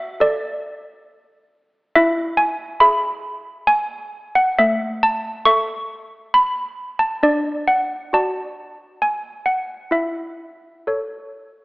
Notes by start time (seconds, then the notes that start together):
Already playing: F#4 E5
0.20 A4 D5
1.95 E4 E5
2.37 G#5
2.80 G#4 E5 B5
3.67 G#5
4.35 F#5
4.59 A3 E5
5.03 A5
5.45 A4 E5 C#6
6.34 B5
6.99 A5
7.23 D4 D5
7.68 F#5
8.13 F#4 D5 A5
9.02 G#5
9.46 F#5
9.91 E4 E5
10.87 A4 C#5